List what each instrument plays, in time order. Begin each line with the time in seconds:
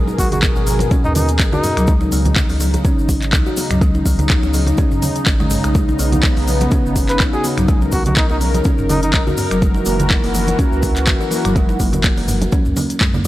Already playing: sub bass G#1, analog synth pad B2 G#4 A#4
0.08 kalimba D#4, muted conga, shaker
0.18 sub bass G#1, kalimba B3, muted trumpet F#4, kick, open hi-hat, shaker
0.32 muted trumpet F#4, closed hi-hat, muted conga, high conga, low conga, shaker
0.43 kalimba B3, finger snap, kick, clap, closed hi-hat, shaker
0.56 sub bass G#1, kalimba B3, muted conga, shaker
0.67 kalimba B3, open hi-hat, high conga, shaker
0.79 closed hi-hat, muted conga, high conga, shaker
0.91 kalimba C#4, kick, closed hi-hat, shaker
1.04 sub bass D#2, muted trumpet D#4, mid tom, shaker
1.15 kalimba D#3, muted trumpet D#4, open hi-hat, muted conga, low conga, shaker
1.28 closed hi-hat, shaker
1.39 sub bass G#1, finger snap, kick, clap, closed hi-hat, muted conga, shaker
1.52 muted trumpet D#4, kalimba F#4, low conga, shaker
1.64 kalimba B3, mid tom, open hi-hat, muted conga, shaker
1.77 sub bass C#2, kalimba F#3, finger snap, closed hi-hat, shaker
1.87 analog synth pad C#3 D#4, kalimba G#3, kick, closed hi-hat, shaker
2.01 kalimba D#4, muted conga, shaker
2.12 sub bass C#2, kalimba B3, open hi-hat, shaker
2.25 closed hi-hat, muted conga, high conga, low conga, shaker
2.36 kalimba B3, finger snap, kick, clap, closed hi-hat, shaker
2.49 sub bass C#2, kalimba B3, open hi-hat, muted conga, shaker
2.60 kalimba B3, open hi-hat, high conga, shaker
2.74 closed hi-hat, muted conga, high conga, shaker
2.85 kalimba C#4, kick, closed hi-hat, shaker
2.98 sub bass G#1, shaker
3.09 kalimba D#3, kick, open hi-hat, muted conga, shaker
3.22 clap, closed hi-hat, shaker
3.33 sub bass C#2, finger snap, kick, clap, closed hi-hat, muted conga, shaker
3.46 kalimba F#4, shaker
3.57 kalimba B3, open hi-hat, muted conga, shaker
3.70 sub bass C#2, kalimba F#3, finger snap, closed hi-hat, mid tom, shaker
3.81 kalimba G#3, kick, closed hi-hat, shaker
3.94 kalimba D#4, muted conga, shaker
4.06 sub bass C#2, kalimba B3, kick, open hi-hat, shaker
4.19 closed hi-hat, muted conga, high conga, low conga, shaker
4.30 kalimba B3, finger snap, kick, clap, closed hi-hat, shaker
4.43 sub bass C#2, kalimba B3, muted conga, shaker
4.54 kalimba B3, open hi-hat, high conga, shaker
4.67 closed hi-hat, muted conga, high conga, shaker
4.77 kalimba C#4, kick, closed hi-hat, high conga, shaker
4.91 sub bass G#1, mid tom, shaker
5.02 kalimba D#3, open hi-hat, muted conga, low conga, shaker
5.16 closed hi-hat, shaker
5.26 sub bass G#1, kalimba D#3, finger snap, kick, clap, closed hi-hat, muted conga, shaker
5.40 kalimba G#3, low conga, shaker
5.50 kalimba G#3, mid tom, open hi-hat, muted conga, shaker
5.64 sub bass B1, kalimba G#3, finger snap, closed hi-hat, shaker
5.75 kalimba G#3, analog synth pad B3, kick, closed hi-hat, shaker
5.88 kalimba D#4, muted conga, shaker
5.99 sub bass B1, kalimba B3, open hi-hat, shaker
6.12 closed hi-hat, muted conga, high conga, low conga, shaker
6.23 kalimba B3, finger snap, kick, clap, closed hi-hat, shaker
6.37 sub bass B1, kalimba B3, open hi-hat, muted conga, shaker
6.47 kalimba B3, open hi-hat, high conga, shaker
6.60 closed hi-hat, muted conga, high conga, shaker
6.71 kalimba C#4, kick, closed hi-hat, shaker
6.85 sub bass F#1, shaker
6.96 kalimba D#3, kick, open hi-hat, muted conga, shaker
7.09 muted trumpet B4, clap, closed hi-hat, shaker
7.20 sub bass B1, finger snap, kick, clap, closed hi-hat, muted conga, shaker
7.33 kalimba F#4, muted trumpet G#4, shaker
7.44 kalimba B3, open hi-hat, muted conga, shaker
7.57 sub bass B1, kalimba F#3, finger snap, closed hi-hat, mid tom, shaker
7.68 kalimba G#3, analog synth pad A#4, kick, closed hi-hat, shaker
7.81 kalimba D#4, muted conga, shaker
7.92 sub bass B1, kalimba B3, muted trumpet F#4, kick, open hi-hat, shaker
8.05 muted trumpet F#4, closed hi-hat, muted conga, high conga, low conga, shaker
8.16 kalimba B3, muted trumpet D#4, finger snap, kick, clap, closed hi-hat, shaker
8.30 sub bass B1, kalimba B3, muted trumpet D#4, muted conga, shaker
8.41 kalimba B3, open hi-hat, high conga, shaker
8.54 closed hi-hat, muted conga, high conga, shaker
8.64 kalimba C#4, kick, closed hi-hat, shaker
8.78 sub bass F#1, mid tom, shaker
8.89 kalimba D#3, muted trumpet D#4, open hi-hat, muted conga, low conga, shaker
9.02 muted trumpet D#4, closed hi-hat, shaker
9.13 sub bass B1, muted trumpet D#4, finger snap, kick, clap, closed hi-hat, muted conga, shaker
9.27 kalimba F#4, low conga, shaker
9.37 kalimba B3, mid tom, open hi-hat, muted conga, shaker
9.51 sub bass F#1, kalimba F#3, finger snap, closed hi-hat, shaker
9.62 analog synth pad E3 F#4, kalimba G#3, kick, closed hi-hat, shaker
9.74 kalimba D#4, muted conga, shaker
9.85 sub bass F#1, kalimba A#3, open hi-hat, shaker
9.99 closed hi-hat, muted conga, high conga, low conga, shaker
10.10 kalimba A#3, finger snap, kick, clap, closed hi-hat, shaker
10.24 sub bass F#1, kalimba A#3, open hi-hat, muted conga, shaker
10.34 kalimba A#3, open hi-hat, high conga, shaker
10.47 closed hi-hat, muted conga, high conga, shaker
10.59 kalimba C#4, kick, closed hi-hat, shaker
10.72 sub bass C#2, shaker
10.83 kalimba D#3, kick, open hi-hat, muted conga, shaker
10.96 clap, closed hi-hat, shaker
11.06 sub bass F#1, finger snap, kick, clap, closed hi-hat, muted conga, shaker
11.21 kalimba F#4, shaker
11.31 kalimba A#3, open hi-hat, muted conga, shaker
11.45 sub bass F#1, kalimba F#3, finger snap, closed hi-hat, mid tom, shaker
11.56 kalimba G#3, kick, closed hi-hat, shaker
11.69 kalimba D#4, muted conga, shaker
11.80 sub bass F#1, kalimba A#3, kick, open hi-hat, shaker
11.93 closed hi-hat, muted conga, high conga, low conga, shaker
12.04 kalimba A#3, finger snap, kick, clap, closed hi-hat, shaker
12.17 sub bass F#1, kalimba A#3, open hi-hat, muted conga, shaker
12.28 kalimba A#3, mid tom, open hi-hat, high conga, shaker
12.41 closed hi-hat, muted conga, high conga, shaker
12.52 kalimba C#4, kick, closed hi-hat, high conga, shaker
12.65 sub bass C#2, mid tom, shaker
12.76 kalimba A#3, open hi-hat, muted conga, low conga, shaker
12.90 closed hi-hat, shaker
13.00 sub bass F#2, kalimba G#3, finger snap, kick, clap, closed hi-hat, muted conga, shaker
13.14 kalimba A#3, low conga, shaker